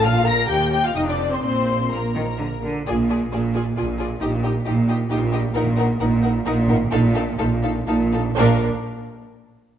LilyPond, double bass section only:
\new Staff \with { instrumentName = "Double bass section" } { \clef bass \time 3/4 \key bes \major \tempo 4 = 130 bes,,4 ees,4 f,,4 | bes,,2~ bes,,8 r8 | bes,,4 bes,,4 bes,,4 | bes,,4 bes,,4 bes,,4 |
bes,,4 bes,,4 bes,,4 | bes,,4 bes,,4 bes,,4 | bes,,8 r2 r8 | }